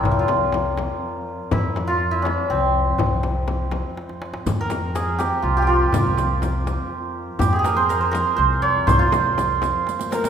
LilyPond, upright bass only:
\new Staff \with { instrumentName = "Upright bass" } { \clef bass \time 6/8 \tempo 4. = 81 c,2 r4 | f,2 c,4 | c,2 r4 | f,2 c,4 |
c,2 r4 | f,2 c,4 | c,2 r4 | }